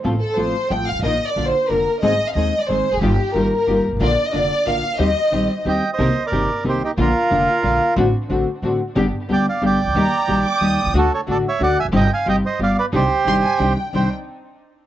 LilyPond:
<<
  \new Staff \with { instrumentName = "Violin section" } { \time 3/4 \key ees \major \tempo 4 = 182 r8 a'8 c''4 g''8 f''8 | \tuplet 3/2 { ees''4 d''8~ d''8 c''4 } bes'8. r16 | ees''8. f''16 ees''8. d''16 c''8. aes'16 | g'4 bes'4. r8 |
d''8. ees''16 d''4 f''4 | ees''2 r4 | \key c \minor r2. | r2. |
r2. | r2. | bes''4. d'''8 ees'''8. r16 | r2. |
r2. | r4 c'''8 aes''8 g''4 | g''8 r2 r8 | }
  \new Staff \with { instrumentName = "Bandoneon" } { \time 3/4 \key ees \major r2. | r2. | r2. | r2. |
r2. | r2 <ees'' g''>8. <c'' ees''>16~ | \key c \minor <c'' ees''>8. <bes' d''>4~ <bes' d''>16 <g' c''>8 <ees' g'>8 | <f' bes'>2. |
r2. | r4 <d'' g''>8 <d'' f''>8 <d'' g''>4~ | <d'' g''>2. | <fis' a'>8 <a' des''>8 <a' d''>8 <des'' e''>8 <d'' fis''>8 <e'' aes''>8 |
<ees'' g''>8 <f'' aes''>8 <ees'' g''>8 <c'' ees''>8 <d'' f''>8 <b' d''>8 | <g' c''>2~ <g' c''>8 r8 | c''8 r2 r8 | }
  \new Staff \with { instrumentName = "String section" } { \time 3/4 \key ees \major <c' f' a'>8 r8 <c' f' a'>8 r8 <c' f' a'>8 r8 | <ees' f' bes'>8 r8 <d' f' bes'>8 r8 <d' f' bes'>8 r8 | <c' ees' aes'>8 r8 <c' ees' aes'>8 r8 <c' ees' aes'>8 r8 | <ees' f' g'>8 r8 <ees' f' g'>8 r8 <ees' f' g'>8 r8 |
<d' f' bes'>8 r8 <d' f' bes'>8 r8 <d' f' bes'>8 r8 | <ees' g' c''>8 r8 <ees' g' c''>8 r8 <ees' g' c''>8 r8 | \key c \minor <c' ees' bes'>8 r8 <c' ees' bes'>8 r8 <c' ees' bes'>8 r8 | <bes d' f'>8 r8 <bes d' f'>8 r8 <bes d' f'>8 r8 |
<c' d' fis'>8 r8 <c' d' fis'>8 r8 <c' d' fis'>8 r8 | <b d' g'>8 r8 <b d' g'>8 r8 <b d' g'>8 r8 | <bes ees' g'>8 r8 <bes ees' g'>8 r8 <bes ees' g'>8 r8 | <a d' fis'>8 r8 <a d' fis'>8 r8 <a d' fis'>8 r8 |
<c' ees' g'>8 r8 <c' ees' g'>8 r8 <b f' g'>8 r8 | <c' d' ees'>8 r8 <c' d' ees'>8 r8 <c' d' ees'>8 r8 | <c' d' ees'>8 r2 r8 | }
  \new Staff \with { instrumentName = "Nylon-string guitar" } { \time 3/4 \key ees \major <f a c' f'>8 r8 <f a c' f'>8 r8 <f a c' f'>8 r8 | <ees bes ees' f'>8 r8 <d bes d' f'>8 r8 <d bes d' f'>8 r8 | <ees aes c' ees' aes'>8 r8 <ees aes c' ees' aes'>8 r8 <ees aes c' ees' aes'>8 r8 | <ees g bes f' g'>8 r8 <ees g bes f' g'>8 r8 <ees g bes f' g'>8 r8 |
<d bes d' f'>8 r8 <d bes d' f'>8 r8 <d bes d' f'>8 r8 | <ees g c' g'>8 r8 <ees g c' g'>8 r8 <ees g c' g'>8 r8 | \key c \minor <c ees bes c' g'>8 r8 <c ees bes c' g'>8 r8 <c ees bes c' g'>8 r8 | <d bes d' f'>8 r8 <d bes d' f'>8 r8 <d bes d' f'>8 r8 |
<d a c' fis'>8 r8 <d a c' fis'>8 r8 <d a c' fis'>8 r8 | <d g b d' g'>8 r8 <d g b d' g'>8 r8 <d g b d' g'>8 r8 | <ees g bes ees' g'>8 r8 <ees g bes ees' g'>8 r8 <ees g bes ees' g'>8 r8 | <d a d' fis'>8 r8 <d a d' fis'>8 r8 <d a d' fis'>8 r8 |
<c g c' ees' g'>8 r8 <c g c' ees' g'>8 r8 <g b f'>8 r8 | <c ees g d' g'>8 r8 <c ees g d' g'>8 r8 <c ees g d' g'>8 r8 | <c ees g d' g'>8 r2 r8 | }
  \new Staff \with { instrumentName = "Upright bass" } { \clef bass \time 3/4 \key ees \major a,,16. r8 r32 a,,16. r8 r32 a,,16. r16 g,,32 aes,,32 a,,32 | bes,,16. r8 r32 bes,,16. r8 r32 f,,16. r8 r32 | aes,,16. r8 r32 ees,16. r8 r32 aes,,16. r16 fes,,32 f,,32 ges,,32 | g,,16. r8 r32 g,,16. r8 r32 g,,16. r16 g,,32 aes,,32 a,,32 |
bes,,16. r8 r32 f,,16. r8 r32 bes,,16. r8 r32 | ees,16. r8 r32 bes,,16. r8 r32 ees,16. r8 r32 | \key c \minor c,16. r8 r32 g,,16. r8 r32 c,16. r8 r32 | bes,,16. r8 r32 f,,16. r8 r32 bes,,16. r8 r32 |
a,,16. r8 r32 a,,16. r8 r32 a,,16. r8 r32 | g,,16. r8 r32 d,16. r8 r32 g,,16. r16 c,32 des,32 d,32 | ees,16. r8 r32 bes,,16. r8 r32 ees,16. r16 b,,32 c,32 des,32 | d,16. r8 r32 a,,16. r8 r32 d,16. r16 e,,32 f,,32 fis,,32 |
g,,16. r8 r32 g,,16. r8 r32 g,,16. r8 r32 | c,16. r8 r32 g,,16. r8 r32 c,16. r8 r32 | c,8 r2 r8 | }
>>